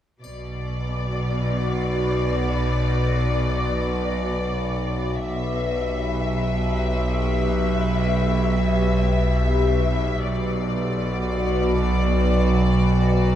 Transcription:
0.22 synth drone B1, double bass section B1, cello section B2, ambient pad F#4 B4 D5, violin section D5, triangle
5.23 double bass section B1, synth drone B1, cello section B2, ambient pad G4 B4 E5, violin section E5
10.23 synth drone B1, double bass section B1, cello section B2, ambient pad F#4 B4 D5, violin section D5

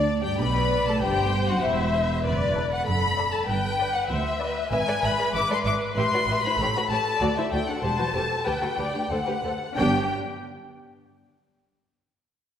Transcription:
Already playing: double bass section D2, cello section D2, violin section D4 D5
0.23 cello section G2, violin section G4 G5
0.39 double bass section B1, cello section B2, violin section B4 B5, viola section D5
0.87 cello section A2, violin section A4 A5
1.01 double bass section G1, cello section G2, violin section G4 G5, viola section C5
1.48 cello section F#2, violin section F#4 F#5
1.63 double bass section E1, cello section E2, violin section E4 E5
2.25 double bass section F#1, cello section F#2, viola section B4, violin section D5
2.56 violin section A4 D5
2.73 violin section F#5
2.86 double bass section F#1, cello section F#2, viola section A4, violin section B5
3.18 violin section A4 D5
3.34 violin section A5
3.48 double bass section G1, cello section G2, viola section B4, violin section G5
3.79 violin section B4 D5
3.95 violin section F#5
4.10 double bass section D2, cello section D2, viola section C5, violin section E5
4.41 violin section B4 D5, viola section B4
4.71 double bass section G#1, cello section G#2, violin section B4 E5 G#5, viola section B4
4.87 cello section G#2, violin section A4 D5
5.02 double bass section G#1, cello section G#2, violin section B4 E5 B5
5.18 cello section G#2, violin section G#4 D5
5.33 double bass section G#1, cello section G#2, violin section B4 E5 D6
5.49 cello section G#2, violin section A4 D5 C6
5.64 double bass section G#1, cello section G#2, violin section B4 E5 D6
5.96 double bass section A1, cello section A2, violin section G4 E5 C6
6.11 cello section A2, violin section F#4 D5
6.27 double bass section A1, cello section A2, violin section G4 E5
6.43 cello section A2, violin section E4 C5 B5
6.58 double bass section A1, cello section A2, violin section G4 C#5, viola section A4
6.74 cello section A2, violin section F#4 B4
6.90 double bass section A1, cello section A2, violin section G4 C#5 A5
7.20 cello section D2, double bass section D2, violin section F#4 D5
7.37 cello section D2, violin section E4 C5 E5
7.52 cello section D2, double bass section D2, violin section F#4 D5 G5
7.68 cello section D2, violin section D4 A4 F#5
7.82 double bass section E1, cello section E2, violin section G4 C5 A5, viola section C5
7.98 cello section E2, violin section F#4 B4
8.14 double bass section E1, cello section E2, violin section G4 C5, viola section A4
8.45 double bass section D2, cello section D2, violin section G4 B4 G5, viola section B4
8.61 cello section D2, violin section F#4 A4
8.78 cello section D2, double bass section D2, violin section G4 B4, viola section D5
8.93 cello section D2, violin section D4 G4
9.10 double bass section D2, cello section D2, violin section A4 C5 F#5, viola section A4
9.26 cello section D2, violin section G4 B4
9.43 double bass section D2, cello section D2, violin section A4 C5
9.77 double bass section G1, cello section G2, viola section B3 D4, violin section G4 G5

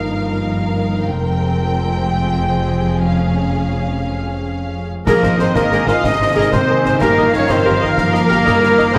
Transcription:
Already playing: double bass section G1, harp G2 A#4 D#5, cello section G2, trombone section D#3 F3, viola section D#4, violin section A#4 F5
0.01 harp A#3
0.17 harp G2
0.33 harp F3
0.49 harp D#5
0.64 harp A#4
0.81 harp D#5
0.97 harp A#3
1.13 double bass section F1, harp F2, cello section F2, trombone section F3 G#3, viola section C4, violin section G5
1.29 harp G#3
1.46 harp C5
1.62 harp G#4
1.79 harp C5
1.95 harp G#3
2.12 harp C3, violin section G#4
2.28 harp G#3
2.44 harp C5
2.76 harp C5
2.93 harp G#3
3.08 harp F2, viola section C#4, trombone section C#4, violin section F5
3.25 harp G#3
3.58 harp G#4
3.75 harp C#5
3.92 harp G#3
4.09 harp F2
4.25 harp F3
4.41 harp C#5
4.58 harp G#4
4.75 harp C#5
4.90 harp G#3
5.06 double bass section G#1, harp G#2, trombone section D#3 C4, cello section F3, french horn section A#3, viola section G#4 A#4, oboe A#4, violin section A#4 D#5, flute section A#4, trumpet section A#4, concert bass drum, snare, crash
5.23 double bass section G#1, harp A#3, viola section A#4 C5, snare
5.38 double bass section G#1, french horn section C4, viola section A#4, flute section C5, trumpet section C5, harp C5, oboe C5, violin section C5, snare
5.54 double bass section G#1, cello section D#3, french horn section A#3, flute section A#4, oboe A#4, harp A#4, trumpet section A#4, viola section A#4 C5, violin section A#4, concert bass drum, snare
5.71 double bass section G#1, viola section G#4 A#4, harp G#5, snare
5.87 double bass section G#1, french horn section F4, viola section A#4 C5, harp C5, oboe F5, trumpet section F5, flute section F5, violin section F5, snare
6.04 double bass section G#1, cello section C3, harp D#3, french horn section D#4, viola section A#4, oboe D#5, violin section D#5, flute section D#5, trumpet section D#5, concert bass drum, snare
6.20 double bass section G#1, harp A#3, viola section A#4 C5
6.35 double bass section G#1, french horn section D#4, viola section G#4 A#4, harp C5, violin section D#5, flute section D#5, trumpet section D#5, oboe D#5
6.52 double bass section G#1, french horn section C4, viola section A#4 C5, harp A#4, oboe C5, trumpet section C5, flute section C5, violin section C5, concert bass drum, snare
6.68 double bass section G#1, viola section A#4, harp G#5
6.84 double bass section G#1, french horn section C4, viola section A#4 C5, harp C5, violin section C5, trumpet section C5, oboe C5, flute section C5, snare
7.00 double bass section G1, harp G2, cello section D#3, trombone section F3, french horn section A#3, viola section G4 A#4, oboe A#4, trumpet section A#4, violin section A#4 F5, flute section A#4, concert bass drum, snare
7.17 double bass section G1, harp A#3, viola section A#4 D#5
7.33 double bass section G1, french horn section C#4, viola section A#4, flute section C#5, oboe C#5, trumpet section C#5, violin section C#5, snare
7.49 double bass section G1, french horn section C4, viola section A#4 D#5, harp A#4, violin section C5, oboe C5, flute section C5, trumpet section C5, concert bass drum, snare
7.64 double bass section G1, viola section G4 A#4, harp F5
7.81 double bass section G1, french horn section A#3, viola section A#4 D#5, violin section A#4, flute section A#4, trumpet section A#4, oboe A#4
7.97 double bass section G1, harp G2, cello section F3, french horn section A#3, viola section A#4, violin section A#4, flute section A#4, oboe A#4, trumpet section A#4, concert bass drum, snare
8.13 double bass section G1, harp A#3, viola section A#4 D#5, snare
8.28 double bass section G1, viola section G4 A#4, harp D#5, snare
8.45 double bass section G1, cello section G3, viola section A#4 D#5, harp A#4, concert bass drum, snare
8.61 double bass section G1, viola section A#4, harp F5, snare
8.77 double bass section G1, viola section A#4 D#5, snare
8.93 double bass section F1, trombone section C3 G#3, cello section G#3, french horn section C4, viola section G4 G#4, violin section C5 G5, oboe C5

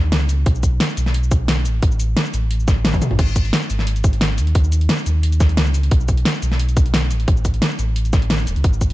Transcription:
Already playing: sub bass D#2
0.12 sub bass C#2, snare, closed hi-hat
0.29 closed hi-hat, cabasa
0.46 sub bass B1, kick, closed hi-hat
0.55 cabasa
0.63 kick, closed hi-hat, cabasa
0.80 snare, closed hi-hat
0.89 cabasa
0.97 sub bass B1, closed hi-hat, cabasa
1.06 snare
1.14 closed hi-hat
1.23 cabasa
1.31 kick, closed hi-hat, cabasa
1.48 snare, closed hi-hat
1.65 sub bass A1, closed hi-hat, cabasa
1.82 sub bass A1, kick, closed hi-hat
1.92 cabasa
2.00 closed hi-hat, cabasa
2.17 snare, closed hi-hat
2.26 cabasa
2.34 sub bass A1, closed hi-hat, cabasa
2.51 closed hi-hat
2.60 cabasa
2.68 kick, snare, closed hi-hat, cabasa
2.85 snare, closed hi-hat, high tom
2.94 kick, high tom, cabasa
3.02 closed hi-hat, mid tom, cabasa
3.11 sub bass A1, mid tom
3.19 sub bass G#1, kick, closed hi-hat, crash
3.28 cabasa
3.36 kick, closed hi-hat, cabasa
3.45 closed hi-hat
3.53 snare, closed hi-hat
3.62 cabasa
3.70 sub bass G#1, closed hi-hat, cabasa
3.79 snare
3.87 closed hi-hat
3.96 closed hi-hat, cabasa
4.04 kick, closed hi-hat, cabasa
4.13 closed hi-hat
4.21 snare, closed hi-hat
4.38 sub bass D#2, closed hi-hat, cabasa
4.47 closed hi-hat
4.55 sub bass D#2, kick, closed hi-hat
4.64 cabasa
4.72 closed hi-hat, cabasa
4.81 closed hi-hat
4.89 snare, closed hi-hat
4.98 cabasa
5.06 sub bass D#2, closed hi-hat, cabasa
5.23 closed hi-hat
5.32 closed hi-hat, cabasa
5.40 kick, snare, closed hi-hat, cabasa
5.49 closed hi-hat
5.57 sub bass C#2, snare, closed hi-hat
5.66 cabasa
5.74 closed hi-hat, cabasa
5.83 closed hi-hat
5.91 sub bass B1, kick, closed hi-hat
6.00 cabasa
6.08 kick, closed hi-hat, cabasa
6.17 closed hi-hat
6.25 snare, closed hi-hat
6.34 cabasa
6.42 sub bass B1, closed hi-hat, cabasa
6.52 snare
6.59 closed hi-hat
6.69 closed hi-hat, cabasa
6.77 kick, closed hi-hat, cabasa
6.86 closed hi-hat
6.94 snare, closed hi-hat
7.11 sub bass A1, closed hi-hat, cabasa
7.20 closed hi-hat
7.28 sub bass A1, kick, closed hi-hat
7.37 cabasa
7.45 kick, closed hi-hat, cabasa
7.54 closed hi-hat
7.62 snare, closed hi-hat
7.71 cabasa
7.79 sub bass A1, closed hi-hat, cabasa
7.96 closed hi-hat
8.05 closed hi-hat, cabasa
8.13 kick, snare, closed hi-hat, cabasa
8.22 closed hi-hat
8.30 snare, closed hi-hat
8.39 cabasa
8.47 sub bass E1, closed hi-hat, cabasa
8.56 sub bass C#2, closed hi-hat
8.64 sub bass G#1, kick, closed hi-hat
8.73 cabasa
8.81 kick, closed hi-hat, cabasa
8.90 closed hi-hat

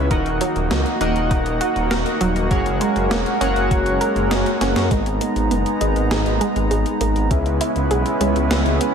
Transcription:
0.11 detuned saw bass D#1, analog polysynth D#3 D#4 F#4 A#4 D#5 F#5, supersaw synth A#3 D#4 F#4, synth arpeggio sound A#4, kick, closed hi-hat
0.26 detuned saw bass D#1, closed hi-hat
0.41 synth arpeggio sound F#3, closed hi-hat
0.56 detuned saw bass D#1, closed hi-hat
0.71 detuned saw bass C#2, synth arpeggio sound F#3, snare, closed hi-hat
0.86 closed hi-hat
1.01 detuned saw bass D#1, analog polysynth D#3 D#4 F#4 A#4 D#5 F#5, synth arpeggio sound A#3, closed hi-hat
1.16 detuned saw bass D#1, closed hi-hat
1.31 detuned saw bass D#1, synth arpeggio sound D#4, kick, closed hi-hat
1.46 detuned saw bass D#1, closed hi-hat
1.61 synth arpeggio sound F#4, closed hi-hat
1.76 detuned saw bass D#1, closed hi-hat
1.91 detuned saw bass D#1, synth arpeggio sound A#4, snare, closed hi-hat
2.06 closed hi-hat
2.21 detuned saw bass D#1, synth arpeggio sound F#3, closed hi-hat
2.36 detuned saw bass D#1, closed hi-hat
2.51 detuned saw bass F#1, synth arpeggio sound F#3, analog polysynth F#3 F#4 G#4 A#4 C#5 F#5, supersaw synth G#3 C#4 A#4, kick, closed hi-hat
2.66 detuned saw bass F#1, closed hi-hat
2.81 synth arpeggio sound G#3, closed hi-hat
2.96 detuned saw bass F#1, closed hi-hat
3.11 detuned saw bass E1, synth arpeggio sound A#3, snare, closed hi-hat
3.26 closed hi-hat
3.41 detuned saw bass F#1, analog polysynth F#3 F#4 G#4 A#4 C#5 F#5, synth arpeggio sound C#4, closed hi-hat
3.56 detuned saw bass F#1, closed hi-hat
3.71 detuned saw bass F#1, synth arpeggio sound F#4, kick, closed hi-hat
3.86 detuned saw bass F#1, closed hi-hat
4.01 synth arpeggio sound A#4, closed hi-hat
4.16 detuned saw bass F#1, closed hi-hat
4.31 detuned saw bass F#1, synth arpeggio sound G#3, snare, closed hi-hat
4.46 closed hi-hat
4.61 detuned saw bass F#1, synth arpeggio sound C#4, snare, closed hi-hat
4.76 detuned saw bass F#2, snare, closed hi-hat
4.91 detuned saw bass G#1, synth arpeggio sound G#3, analog polysynth G#3 D#4 G#4 B4 D#5, supersaw synth G#3 B3 D#4 A#5, kick, closed hi-hat
5.06 detuned saw bass G#1, closed hi-hat
5.21 synth arpeggio sound A#3, closed hi-hat
5.36 detuned saw bass G#1, closed hi-hat
5.51 detuned saw bass F#1, synth arpeggio sound B3, closed hi-hat
5.66 closed hi-hat
5.81 detuned saw bass G#1, analog polysynth G#3 D#4 G#4 A#4 B4 D#5, synth arpeggio sound D#4, closed hi-hat
5.96 detuned saw bass G#1, closed hi-hat
6.11 detuned saw bass G#1, synth arpeggio sound G#4, snare, closed hi-hat
6.26 detuned saw bass G#1, closed hi-hat
6.41 synth arpeggio sound G#3, closed hi-hat
6.56 detuned saw bass G#1, closed hi-hat
6.71 detuned saw bass G#1, synth arpeggio sound G#3, closed hi-hat
6.86 closed hi-hat
7.01 detuned saw bass G#1, synth arpeggio sound A#3, closed hi-hat
7.16 detuned saw bass G#1, closed hi-hat
7.31 detuned saw bass C#2, analog polysynth C#3 E4 G#4 B4 C#5 E5, supersaw synth G#3 B3 C#4 E4 B4, synth arpeggio sound C#4, kick, closed hi-hat
7.46 detuned saw bass C#2, closed hi-hat
7.61 synth arpeggio sound E4, closed hi-hat
7.76 detuned saw bass C#2, closed hi-hat
7.91 detuned saw bass B1, synth arpeggio sound G#4, closed hi-hat
8.06 closed hi-hat
8.21 detuned saw bass C#2, analog polysynth C#3 E4 G#4 B4 C#5 E5, synth arpeggio sound G#3, closed hi-hat
8.36 detuned saw bass C#2, closed hi-hat
8.51 detuned saw bass C#2, synth arpeggio sound G#3, snare, closed hi-hat
8.66 detuned saw bass C#2, closed hi-hat
8.81 synth arpeggio sound B3, closed hi-hat

